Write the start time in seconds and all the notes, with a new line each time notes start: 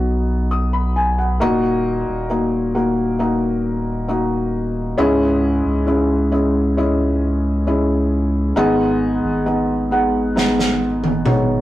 Already playing: B1 B3 D#4 F#4 D#5
0.51 D#6
0.73 B5
0.96 G#5
1.18 F#5
1.40 D#1 A#2 A#3 D#4 F#4 D#5
2.08 D#1
2.30 A#3 D#4 F#4 D#5
2.75 A#3 D#4 F#4 A#4
3.19 A#3 D#4 F#4 D#5
4.08 A#3 D#4 F#4 D#5
4.98 C#2 G#2 C#4 E4 G#4 D#5
5.65 C#2
5.87 C#4 E4 G#4 D#5
6.31 C#4 E4 G#4 D#5
6.77 C#4 E4 G#4 D#5
7.67 C#4 E4 G#4 D#5
8.56 G#1 G#2 D#3 B3 D#4 G#4 D#5
9.23 G#1
9.46 B3 D#4 G#4 D#5
9.91 B3 D#4 G#4 F#5
10.36 B3 D#4 G#4 D#5, snare
10.59 snare
11.04 high tom
11.25 B3 D#4 G#4 C#5, mid tom